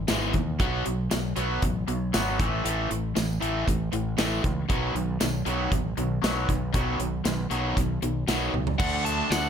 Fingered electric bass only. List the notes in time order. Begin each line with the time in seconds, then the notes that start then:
0.09 G#1
0.35 D#2
0.60 B1
0.87 B1
1.12 B1
1.37 B1
1.63 A1
1.89 B1
2.14 G#1
2.40 A1
2.65 A1
2.91 A1
3.17 A1
3.42 A1
3.68 A1
3.93 A1
4.19 A1
4.44 C#2
4.70 B1
4.95 B1
5.22 B1
5.46 B1
5.72 A1
5.98 B1
6.23 B1
6.49 B1
6.75 B1
7.00 B1
7.25 B1
7.51 B1
7.77 B1
8.03 B1
8.28 B1
8.54 C#2
8.80 D2
9.30 D2